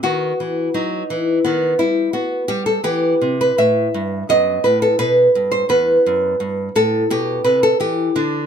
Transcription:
0, 0, Header, 1, 2, 480
1, 0, Start_track
1, 0, Key_signature, 1, "minor"
1, 0, Tempo, 705882
1, 32, Time_signature, 4, 2, 24, 8
1, 5756, End_track
2, 0, Start_track
2, 0, Title_t, "Nylon-string guitar"
2, 0, Program_c, 0, 24
2, 20, Note_on_c, 0, 51, 57
2, 23, Note_on_c, 0, 59, 38
2, 24, Note_on_c, 0, 66, 83
2, 217, Note_off_c, 0, 51, 0
2, 273, Note_on_c, 0, 52, 50
2, 462, Note_off_c, 0, 52, 0
2, 483, Note_off_c, 0, 66, 0
2, 505, Note_on_c, 0, 54, 52
2, 506, Note_on_c, 0, 63, 72
2, 696, Note_off_c, 0, 54, 0
2, 750, Note_on_c, 0, 52, 54
2, 938, Note_off_c, 0, 52, 0
2, 951, Note_off_c, 0, 59, 0
2, 963, Note_off_c, 0, 63, 0
2, 983, Note_on_c, 0, 59, 75
2, 991, Note_on_c, 0, 51, 55
2, 1177, Note_off_c, 0, 51, 0
2, 1211, Note_off_c, 0, 59, 0
2, 1217, Note_on_c, 0, 64, 74
2, 1225, Note_on_c, 0, 55, 49
2, 1413, Note_off_c, 0, 55, 0
2, 1447, Note_off_c, 0, 64, 0
2, 1450, Note_on_c, 0, 66, 72
2, 1454, Note_on_c, 0, 59, 55
2, 1647, Note_off_c, 0, 59, 0
2, 1683, Note_off_c, 0, 66, 0
2, 1688, Note_on_c, 0, 67, 91
2, 1695, Note_on_c, 0, 55, 57
2, 1806, Note_off_c, 0, 67, 0
2, 1809, Note_on_c, 0, 69, 72
2, 1889, Note_off_c, 0, 55, 0
2, 1929, Note_on_c, 0, 52, 64
2, 1930, Note_off_c, 0, 69, 0
2, 1932, Note_on_c, 0, 59, 40
2, 1933, Note_on_c, 0, 67, 89
2, 2132, Note_off_c, 0, 52, 0
2, 2186, Note_on_c, 0, 48, 53
2, 2292, Note_off_c, 0, 67, 0
2, 2318, Note_on_c, 0, 71, 77
2, 2386, Note_off_c, 0, 48, 0
2, 2434, Note_on_c, 0, 45, 54
2, 2435, Note_off_c, 0, 71, 0
2, 2437, Note_on_c, 0, 76, 86
2, 2630, Note_off_c, 0, 45, 0
2, 2682, Note_on_c, 0, 43, 53
2, 2873, Note_off_c, 0, 43, 0
2, 2888, Note_off_c, 0, 59, 0
2, 2901, Note_off_c, 0, 76, 0
2, 2917, Note_on_c, 0, 59, 44
2, 2922, Note_on_c, 0, 42, 59
2, 2922, Note_on_c, 0, 75, 93
2, 3113, Note_off_c, 0, 42, 0
2, 3150, Note_off_c, 0, 75, 0
2, 3155, Note_on_c, 0, 71, 76
2, 3165, Note_on_c, 0, 45, 56
2, 3275, Note_off_c, 0, 71, 0
2, 3278, Note_on_c, 0, 69, 81
2, 3354, Note_off_c, 0, 45, 0
2, 3390, Note_off_c, 0, 69, 0
2, 3392, Note_on_c, 0, 71, 93
2, 3393, Note_on_c, 0, 47, 64
2, 3585, Note_off_c, 0, 47, 0
2, 3640, Note_on_c, 0, 43, 59
2, 3737, Note_off_c, 0, 71, 0
2, 3750, Note_on_c, 0, 72, 75
2, 3829, Note_off_c, 0, 43, 0
2, 3845, Note_off_c, 0, 59, 0
2, 3869, Note_on_c, 0, 40, 63
2, 3871, Note_off_c, 0, 72, 0
2, 3871, Note_on_c, 0, 59, 45
2, 3873, Note_on_c, 0, 71, 93
2, 4062, Note_off_c, 0, 40, 0
2, 4124, Note_on_c, 0, 42, 55
2, 4310, Note_off_c, 0, 42, 0
2, 4352, Note_on_c, 0, 43, 59
2, 4543, Note_off_c, 0, 43, 0
2, 4562, Note_off_c, 0, 71, 0
2, 4594, Note_on_c, 0, 45, 57
2, 4597, Note_on_c, 0, 69, 87
2, 4783, Note_off_c, 0, 45, 0
2, 4821, Note_off_c, 0, 69, 0
2, 4831, Note_on_c, 0, 47, 63
2, 4835, Note_on_c, 0, 67, 94
2, 5020, Note_off_c, 0, 47, 0
2, 5059, Note_off_c, 0, 67, 0
2, 5062, Note_on_c, 0, 71, 83
2, 5067, Note_on_c, 0, 48, 55
2, 5183, Note_off_c, 0, 71, 0
2, 5189, Note_on_c, 0, 69, 84
2, 5258, Note_off_c, 0, 48, 0
2, 5302, Note_on_c, 0, 52, 56
2, 5304, Note_off_c, 0, 69, 0
2, 5307, Note_on_c, 0, 67, 86
2, 5499, Note_off_c, 0, 52, 0
2, 5538, Note_off_c, 0, 67, 0
2, 5546, Note_on_c, 0, 50, 57
2, 5547, Note_on_c, 0, 62, 83
2, 5743, Note_off_c, 0, 50, 0
2, 5756, Note_off_c, 0, 59, 0
2, 5756, Note_off_c, 0, 62, 0
2, 5756, End_track
0, 0, End_of_file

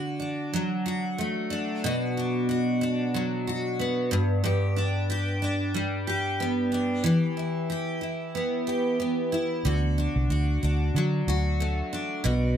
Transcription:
0, 0, Header, 1, 3, 480
1, 0, Start_track
1, 0, Tempo, 652174
1, 1344, Time_signature, 4, 2, 24, 8
1, 9252, End_track
2, 0, Start_track
2, 0, Title_t, "Steel-string acoustic guitar"
2, 0, Program_c, 0, 25
2, 0, Note_on_c, 0, 50, 73
2, 0, Note_on_c, 0, 62, 48
2, 0, Note_on_c, 0, 66, 59
2, 141, Note_off_c, 0, 62, 0
2, 144, Note_on_c, 0, 62, 51
2, 394, Note_on_c, 0, 54, 61
2, 628, Note_off_c, 0, 66, 0
2, 631, Note_on_c, 0, 66, 59
2, 872, Note_on_c, 0, 57, 53
2, 1103, Note_off_c, 0, 62, 0
2, 1106, Note_on_c, 0, 62, 55
2, 1352, Note_off_c, 0, 50, 0
2, 1355, Note_off_c, 0, 66, 0
2, 1355, Note_on_c, 0, 47, 73
2, 1358, Note_on_c, 0, 66, 60
2, 1401, Note_off_c, 0, 57, 0
2, 1596, Note_off_c, 0, 62, 0
2, 1599, Note_on_c, 0, 62, 51
2, 1823, Note_off_c, 0, 66, 0
2, 1832, Note_on_c, 0, 66, 56
2, 2067, Note_off_c, 0, 62, 0
2, 2070, Note_on_c, 0, 62, 52
2, 2311, Note_off_c, 0, 54, 0
2, 2314, Note_on_c, 0, 54, 61
2, 2549, Note_off_c, 0, 66, 0
2, 2557, Note_on_c, 0, 66, 59
2, 2793, Note_on_c, 0, 59, 52
2, 3026, Note_on_c, 0, 43, 73
2, 3031, Note_off_c, 0, 47, 0
2, 3083, Note_off_c, 0, 54, 0
2, 3084, Note_off_c, 0, 66, 0
2, 3256, Note_off_c, 0, 43, 0
2, 3265, Note_on_c, 0, 43, 73
2, 3270, Note_on_c, 0, 67, 59
2, 3504, Note_off_c, 0, 62, 0
2, 3507, Note_on_c, 0, 62, 54
2, 3749, Note_off_c, 0, 67, 0
2, 3751, Note_on_c, 0, 67, 63
2, 3980, Note_off_c, 0, 62, 0
2, 3989, Note_on_c, 0, 62, 54
2, 4228, Note_on_c, 0, 55, 59
2, 4467, Note_off_c, 0, 67, 0
2, 4470, Note_on_c, 0, 67, 57
2, 4708, Note_off_c, 0, 59, 0
2, 4711, Note_on_c, 0, 59, 52
2, 4936, Note_off_c, 0, 62, 0
2, 4945, Note_on_c, 0, 62, 53
2, 5176, Note_off_c, 0, 55, 0
2, 5179, Note_on_c, 0, 52, 72
2, 5183, Note_off_c, 0, 67, 0
2, 5185, Note_off_c, 0, 43, 0
2, 5186, Note_on_c, 0, 67, 57
2, 5238, Note_off_c, 0, 62, 0
2, 5424, Note_on_c, 0, 64, 51
2, 5656, Note_off_c, 0, 67, 0
2, 5665, Note_on_c, 0, 67, 59
2, 5887, Note_off_c, 0, 64, 0
2, 5896, Note_on_c, 0, 64, 51
2, 6142, Note_off_c, 0, 59, 0
2, 6145, Note_on_c, 0, 59, 60
2, 6372, Note_off_c, 0, 67, 0
2, 6381, Note_on_c, 0, 67, 57
2, 6613, Note_off_c, 0, 59, 0
2, 6622, Note_on_c, 0, 59, 50
2, 6852, Note_off_c, 0, 64, 0
2, 6861, Note_on_c, 0, 64, 52
2, 7100, Note_off_c, 0, 52, 0
2, 7101, Note_off_c, 0, 67, 0
2, 7101, Note_on_c, 0, 50, 68
2, 7108, Note_on_c, 0, 66, 59
2, 7155, Note_off_c, 0, 59, 0
2, 7155, Note_off_c, 0, 64, 0
2, 7345, Note_on_c, 0, 62, 52
2, 7579, Note_off_c, 0, 66, 0
2, 7582, Note_on_c, 0, 66, 59
2, 7819, Note_off_c, 0, 62, 0
2, 7822, Note_on_c, 0, 62, 50
2, 8068, Note_on_c, 0, 54, 58
2, 8300, Note_off_c, 0, 66, 0
2, 8302, Note_on_c, 0, 66, 59
2, 8540, Note_on_c, 0, 57, 54
2, 8775, Note_off_c, 0, 62, 0
2, 8778, Note_on_c, 0, 62, 53
2, 9004, Note_off_c, 0, 50, 0
2, 9007, Note_on_c, 0, 47, 74
2, 9008, Note_off_c, 0, 66, 0
2, 9011, Note_on_c, 0, 66, 60
2, 9071, Note_off_c, 0, 57, 0
2, 9251, Note_off_c, 0, 62, 0
2, 9252, Note_off_c, 0, 47, 0
2, 9252, Note_off_c, 0, 54, 0
2, 9252, Note_off_c, 0, 66, 0
2, 9252, End_track
3, 0, Start_track
3, 0, Title_t, "Fingered electric bass"
3, 0, Program_c, 1, 33
3, 7104, Note_on_c, 1, 38, 84
3, 7408, Note_off_c, 1, 38, 0
3, 7476, Note_on_c, 1, 36, 81
3, 7564, Note_off_c, 1, 36, 0
3, 7583, Note_on_c, 1, 38, 80
3, 7779, Note_off_c, 1, 38, 0
3, 7825, Note_on_c, 1, 38, 79
3, 8020, Note_off_c, 1, 38, 0
3, 8056, Note_on_c, 1, 50, 84
3, 8254, Note_off_c, 1, 50, 0
3, 8297, Note_on_c, 1, 38, 73
3, 8691, Note_off_c, 1, 38, 0
3, 9019, Note_on_c, 1, 35, 95
3, 9252, Note_off_c, 1, 35, 0
3, 9252, End_track
0, 0, End_of_file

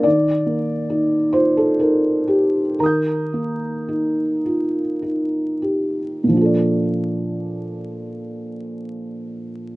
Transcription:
0, 0, Header, 1, 2, 480
1, 0, Start_track
1, 0, Key_signature, -2, "major"
1, 0, Tempo, 836820
1, 28, Time_signature, 3, 2, 24, 8
1, 508, Tempo, 907716
1, 988, Tempo, 996678
1, 1468, Tempo, 1113173
1, 2428, Tempo, 1202405
1, 4322, End_track
2, 0, Start_track
2, 0, Title_t, "Felt piano"
2, 0, Program_c, 0, 0
2, 0, Control_c, 0, 64, 127
2, 19, Note_on_c, 0, 74, 71
2, 27, Note_on_c, 0, 51, 53
2, 39, Control_c, 0, 64, 0
2, 148, Control_c, 0, 64, 127
2, 266, Note_on_c, 0, 58, 34
2, 514, Note_on_c, 0, 63, 43
2, 647, Note_off_c, 0, 58, 0
2, 738, Note_off_c, 0, 74, 0
2, 741, Note_on_c, 0, 72, 67
2, 746, Note_on_c, 0, 65, 31
2, 863, Note_off_c, 0, 72, 0
2, 871, Note_on_c, 0, 69, 52
2, 892, Note_off_c, 0, 63, 0
2, 988, Note_on_c, 0, 70, 53
2, 990, Note_off_c, 0, 65, 0
2, 991, Note_off_c, 0, 69, 0
2, 995, Note_on_c, 0, 63, 33
2, 1220, Note_on_c, 0, 67, 53
2, 1222, Note_off_c, 0, 70, 0
2, 1372, Note_off_c, 0, 63, 0
2, 1449, Note_off_c, 0, 51, 0
2, 1467, Note_off_c, 0, 67, 0
2, 1468, Note_on_c, 0, 70, 54
2, 1472, Note_on_c, 0, 51, 40
2, 1472, Note_on_c, 0, 82, 28
2, 1478, Control_c, 0, 64, 0
2, 1487, Note_on_c, 0, 87, 29
2, 1498, Note_on_c, 0, 91, 28
2, 1558, Control_c, 0, 64, 127
2, 1704, Note_on_c, 0, 58, 28
2, 1940, Note_on_c, 0, 63, 33
2, 2084, Note_off_c, 0, 58, 0
2, 2186, Note_on_c, 0, 65, 26
2, 2329, Note_off_c, 0, 63, 0
2, 2428, Note_off_c, 0, 70, 0
2, 2430, Note_on_c, 0, 63, 31
2, 2431, Note_off_c, 0, 65, 0
2, 2669, Note_on_c, 0, 67, 30
2, 2817, Note_off_c, 0, 63, 0
2, 2899, Note_off_c, 0, 51, 0
2, 2899, Note_off_c, 0, 82, 0
2, 2906, Note_off_c, 0, 87, 0
2, 2911, Note_off_c, 0, 91, 0
2, 2914, Note_off_c, 0, 67, 0
2, 2915, Note_on_c, 0, 46, 42
2, 2924, Control_c, 0, 64, 0
2, 2934, Note_on_c, 0, 53, 36
2, 2951, Note_on_c, 0, 62, 33
2, 2967, Note_on_c, 0, 65, 34
2, 2986, Note_on_c, 0, 69, 33
2, 3001, Note_on_c, 0, 74, 30
2, 3029, Control_c, 0, 64, 127
2, 4322, Note_off_c, 0, 46, 0
2, 4322, Note_off_c, 0, 53, 0
2, 4322, Note_off_c, 0, 62, 0
2, 4322, Note_off_c, 0, 65, 0
2, 4322, Note_off_c, 0, 69, 0
2, 4322, Note_off_c, 0, 74, 0
2, 4322, End_track
0, 0, End_of_file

